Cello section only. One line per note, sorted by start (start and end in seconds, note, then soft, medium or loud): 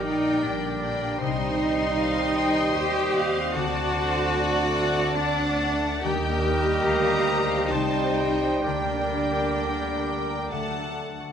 0.05 0.44 D#4 loud
0.45 1.21 D4 loud
1.21 2.73 D#4 loud
2.76 3.56 G4 loud
3.55 5.13 F#4 loud
5.15 6.04 D4 loud
6.03 7.68 G4 loud
7.71 8.65 D#4 loud
8.64 10.98 D4 loud